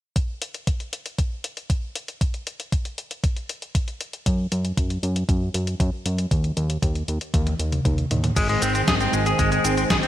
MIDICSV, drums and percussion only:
0, 0, Header, 1, 2, 480
1, 0, Start_track
1, 0, Key_signature, -4, "major"
1, 0, Tempo, 512821
1, 149, Time_signature, 4, 2, 24, 8
1, 9430, End_track
2, 0, Start_track
2, 0, Title_t, "Drums"
2, 149, Note_on_c, 9, 36, 108
2, 149, Note_on_c, 9, 42, 81
2, 243, Note_off_c, 9, 36, 0
2, 243, Note_off_c, 9, 42, 0
2, 389, Note_on_c, 9, 42, 82
2, 483, Note_off_c, 9, 42, 0
2, 509, Note_on_c, 9, 42, 50
2, 603, Note_off_c, 9, 42, 0
2, 629, Note_on_c, 9, 36, 112
2, 629, Note_on_c, 9, 42, 78
2, 723, Note_off_c, 9, 36, 0
2, 723, Note_off_c, 9, 42, 0
2, 750, Note_on_c, 9, 42, 35
2, 843, Note_off_c, 9, 42, 0
2, 869, Note_on_c, 9, 42, 79
2, 963, Note_off_c, 9, 42, 0
2, 989, Note_on_c, 9, 42, 55
2, 1083, Note_off_c, 9, 42, 0
2, 1109, Note_on_c, 9, 36, 109
2, 1109, Note_on_c, 9, 42, 80
2, 1203, Note_off_c, 9, 36, 0
2, 1203, Note_off_c, 9, 42, 0
2, 1349, Note_on_c, 9, 42, 80
2, 1443, Note_off_c, 9, 42, 0
2, 1469, Note_on_c, 9, 42, 49
2, 1563, Note_off_c, 9, 42, 0
2, 1589, Note_on_c, 9, 36, 114
2, 1590, Note_on_c, 9, 42, 78
2, 1683, Note_off_c, 9, 36, 0
2, 1683, Note_off_c, 9, 42, 0
2, 1830, Note_on_c, 9, 42, 74
2, 1923, Note_off_c, 9, 42, 0
2, 1950, Note_on_c, 9, 42, 51
2, 2043, Note_off_c, 9, 42, 0
2, 2069, Note_on_c, 9, 36, 116
2, 2070, Note_on_c, 9, 42, 80
2, 2163, Note_off_c, 9, 36, 0
2, 2163, Note_off_c, 9, 42, 0
2, 2190, Note_on_c, 9, 42, 36
2, 2284, Note_off_c, 9, 42, 0
2, 2310, Note_on_c, 9, 42, 81
2, 2403, Note_off_c, 9, 42, 0
2, 2431, Note_on_c, 9, 42, 50
2, 2524, Note_off_c, 9, 42, 0
2, 2549, Note_on_c, 9, 36, 111
2, 2550, Note_on_c, 9, 42, 79
2, 2643, Note_off_c, 9, 36, 0
2, 2643, Note_off_c, 9, 42, 0
2, 2669, Note_on_c, 9, 42, 36
2, 2763, Note_off_c, 9, 42, 0
2, 2789, Note_on_c, 9, 42, 80
2, 2883, Note_off_c, 9, 42, 0
2, 2910, Note_on_c, 9, 42, 54
2, 3004, Note_off_c, 9, 42, 0
2, 3029, Note_on_c, 9, 36, 121
2, 3029, Note_on_c, 9, 42, 77
2, 3123, Note_off_c, 9, 36, 0
2, 3123, Note_off_c, 9, 42, 0
2, 3150, Note_on_c, 9, 42, 36
2, 3243, Note_off_c, 9, 42, 0
2, 3270, Note_on_c, 9, 42, 78
2, 3364, Note_off_c, 9, 42, 0
2, 3390, Note_on_c, 9, 42, 50
2, 3483, Note_off_c, 9, 42, 0
2, 3509, Note_on_c, 9, 36, 121
2, 3510, Note_on_c, 9, 42, 78
2, 3603, Note_off_c, 9, 36, 0
2, 3603, Note_off_c, 9, 42, 0
2, 3630, Note_on_c, 9, 42, 37
2, 3723, Note_off_c, 9, 42, 0
2, 3749, Note_on_c, 9, 42, 74
2, 3843, Note_off_c, 9, 42, 0
2, 3869, Note_on_c, 9, 42, 51
2, 3963, Note_off_c, 9, 42, 0
2, 3989, Note_on_c, 9, 36, 118
2, 3989, Note_on_c, 9, 42, 82
2, 4082, Note_off_c, 9, 36, 0
2, 4083, Note_off_c, 9, 42, 0
2, 4229, Note_on_c, 9, 42, 82
2, 4322, Note_off_c, 9, 42, 0
2, 4349, Note_on_c, 9, 42, 50
2, 4443, Note_off_c, 9, 42, 0
2, 4469, Note_on_c, 9, 36, 112
2, 4469, Note_on_c, 9, 42, 75
2, 4562, Note_off_c, 9, 36, 0
2, 4563, Note_off_c, 9, 42, 0
2, 4590, Note_on_c, 9, 42, 35
2, 4683, Note_off_c, 9, 42, 0
2, 4710, Note_on_c, 9, 42, 75
2, 4803, Note_off_c, 9, 42, 0
2, 4830, Note_on_c, 9, 42, 54
2, 4924, Note_off_c, 9, 42, 0
2, 4949, Note_on_c, 9, 36, 114
2, 4950, Note_on_c, 9, 42, 79
2, 5042, Note_off_c, 9, 36, 0
2, 5043, Note_off_c, 9, 42, 0
2, 5189, Note_on_c, 9, 42, 79
2, 5283, Note_off_c, 9, 42, 0
2, 5309, Note_on_c, 9, 42, 51
2, 5403, Note_off_c, 9, 42, 0
2, 5428, Note_on_c, 9, 36, 117
2, 5430, Note_on_c, 9, 42, 77
2, 5522, Note_off_c, 9, 36, 0
2, 5523, Note_off_c, 9, 42, 0
2, 5669, Note_on_c, 9, 42, 77
2, 5762, Note_off_c, 9, 42, 0
2, 5789, Note_on_c, 9, 42, 51
2, 5882, Note_off_c, 9, 42, 0
2, 5908, Note_on_c, 9, 36, 114
2, 5909, Note_on_c, 9, 42, 76
2, 6002, Note_off_c, 9, 36, 0
2, 6003, Note_off_c, 9, 42, 0
2, 6029, Note_on_c, 9, 42, 34
2, 6123, Note_off_c, 9, 42, 0
2, 6149, Note_on_c, 9, 42, 77
2, 6242, Note_off_c, 9, 42, 0
2, 6269, Note_on_c, 9, 42, 49
2, 6362, Note_off_c, 9, 42, 0
2, 6388, Note_on_c, 9, 36, 118
2, 6389, Note_on_c, 9, 42, 76
2, 6482, Note_off_c, 9, 36, 0
2, 6483, Note_off_c, 9, 42, 0
2, 6510, Note_on_c, 9, 42, 35
2, 6603, Note_off_c, 9, 42, 0
2, 6629, Note_on_c, 9, 42, 72
2, 6723, Note_off_c, 9, 42, 0
2, 6749, Note_on_c, 9, 42, 53
2, 6843, Note_off_c, 9, 42, 0
2, 6868, Note_on_c, 9, 36, 118
2, 6869, Note_on_c, 9, 42, 75
2, 6869, Note_on_c, 9, 48, 58
2, 6962, Note_off_c, 9, 36, 0
2, 6963, Note_off_c, 9, 42, 0
2, 6963, Note_off_c, 9, 48, 0
2, 6989, Note_on_c, 9, 42, 35
2, 6989, Note_on_c, 9, 48, 53
2, 7083, Note_off_c, 9, 42, 0
2, 7083, Note_off_c, 9, 48, 0
2, 7109, Note_on_c, 9, 42, 78
2, 7203, Note_off_c, 9, 42, 0
2, 7230, Note_on_c, 9, 42, 47
2, 7230, Note_on_c, 9, 47, 65
2, 7323, Note_off_c, 9, 42, 0
2, 7323, Note_off_c, 9, 47, 0
2, 7348, Note_on_c, 9, 36, 125
2, 7350, Note_on_c, 9, 42, 74
2, 7350, Note_on_c, 9, 47, 82
2, 7442, Note_off_c, 9, 36, 0
2, 7443, Note_off_c, 9, 42, 0
2, 7443, Note_off_c, 9, 47, 0
2, 7470, Note_on_c, 9, 42, 37
2, 7564, Note_off_c, 9, 42, 0
2, 7590, Note_on_c, 9, 42, 73
2, 7590, Note_on_c, 9, 45, 88
2, 7683, Note_off_c, 9, 42, 0
2, 7683, Note_off_c, 9, 45, 0
2, 7710, Note_on_c, 9, 42, 52
2, 7710, Note_on_c, 9, 45, 88
2, 7804, Note_off_c, 9, 42, 0
2, 7804, Note_off_c, 9, 45, 0
2, 7829, Note_on_c, 9, 36, 110
2, 7830, Note_on_c, 9, 42, 95
2, 7830, Note_on_c, 9, 49, 94
2, 7830, Note_on_c, 9, 69, 42
2, 7922, Note_off_c, 9, 36, 0
2, 7923, Note_off_c, 9, 42, 0
2, 7923, Note_off_c, 9, 49, 0
2, 7923, Note_off_c, 9, 69, 0
2, 7950, Note_on_c, 9, 42, 39
2, 8043, Note_off_c, 9, 42, 0
2, 8070, Note_on_c, 9, 42, 70
2, 8070, Note_on_c, 9, 69, 70
2, 8164, Note_off_c, 9, 42, 0
2, 8164, Note_off_c, 9, 69, 0
2, 8190, Note_on_c, 9, 42, 37
2, 8190, Note_on_c, 9, 69, 28
2, 8283, Note_off_c, 9, 42, 0
2, 8283, Note_off_c, 9, 69, 0
2, 8309, Note_on_c, 9, 36, 119
2, 8310, Note_on_c, 9, 38, 116
2, 8310, Note_on_c, 9, 42, 93
2, 8310, Note_on_c, 9, 69, 37
2, 8402, Note_off_c, 9, 36, 0
2, 8403, Note_off_c, 9, 38, 0
2, 8403, Note_off_c, 9, 42, 0
2, 8403, Note_off_c, 9, 69, 0
2, 8430, Note_on_c, 9, 42, 39
2, 8430, Note_on_c, 9, 69, 26
2, 8523, Note_off_c, 9, 42, 0
2, 8523, Note_off_c, 9, 69, 0
2, 8550, Note_on_c, 9, 42, 35
2, 8550, Note_on_c, 9, 69, 67
2, 8643, Note_off_c, 9, 42, 0
2, 8643, Note_off_c, 9, 69, 0
2, 8670, Note_on_c, 9, 42, 43
2, 8670, Note_on_c, 9, 69, 29
2, 8763, Note_off_c, 9, 42, 0
2, 8763, Note_off_c, 9, 69, 0
2, 8789, Note_on_c, 9, 36, 111
2, 8790, Note_on_c, 9, 42, 100
2, 8790, Note_on_c, 9, 69, 39
2, 8883, Note_off_c, 9, 36, 0
2, 8883, Note_off_c, 9, 42, 0
2, 8883, Note_off_c, 9, 69, 0
2, 8910, Note_on_c, 9, 42, 38
2, 8910, Note_on_c, 9, 69, 27
2, 9003, Note_off_c, 9, 42, 0
2, 9003, Note_off_c, 9, 69, 0
2, 9030, Note_on_c, 9, 42, 72
2, 9030, Note_on_c, 9, 69, 67
2, 9123, Note_off_c, 9, 42, 0
2, 9123, Note_off_c, 9, 69, 0
2, 9149, Note_on_c, 9, 42, 37
2, 9149, Note_on_c, 9, 69, 28
2, 9243, Note_off_c, 9, 42, 0
2, 9243, Note_off_c, 9, 69, 0
2, 9269, Note_on_c, 9, 36, 113
2, 9270, Note_on_c, 9, 38, 114
2, 9270, Note_on_c, 9, 42, 93
2, 9270, Note_on_c, 9, 69, 38
2, 9363, Note_off_c, 9, 36, 0
2, 9363, Note_off_c, 9, 38, 0
2, 9363, Note_off_c, 9, 42, 0
2, 9363, Note_off_c, 9, 69, 0
2, 9389, Note_on_c, 9, 42, 41
2, 9430, Note_off_c, 9, 42, 0
2, 9430, End_track
0, 0, End_of_file